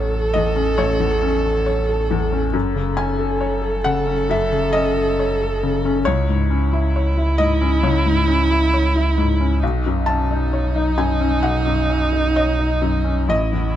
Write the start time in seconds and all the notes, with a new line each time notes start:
Already playing: A1 E2 C#4 A4 C#5
0.13 A4
0.34 E2 D#5
0.56 C#4
0.78 A1 C#5
1.00 E2
1.22 C#4
1.44 A4
1.66 C#5
1.89 A4
2.11 E2
2.32 C#4
2.53 F#1 F#2 A4
2.75 C#3
2.97 C#4 G#5
3.19 A4
3.41 C#5
3.62 A4
3.84 C#3 F#5
4.07 C#4
4.29 F#2 E5
4.52 C#3
4.73 C#4 D#5
4.97 A4
5.19 C#5
5.42 A4
5.63 C#3
5.85 C#4
6.05 C#2 E4 C#5
6.29 G#2
6.50 C#4
6.73 E4
6.96 C#5
7.17 E4
7.38 G#2 D#5
7.61 C#4
7.83 C#2 C#5
8.06 G#2
8.28 C#4
8.51 E4
8.74 C#5
8.96 E4
9.18 G#2
9.41 C#4
9.62 B1 D#4
9.86 F#2
10.06 C#4 A5
10.31 D#4
10.53 C#5
10.76 D#4
10.98 F#2 G#5
11.21 C#4
11.43 B1 F#5
11.66 F#2
11.90 C#4
12.13 D#4
12.36 C#5 D#5
12.59 D#4
12.81 F#2
13.04 C#4
13.28 A1 E4 D#5
13.52 E2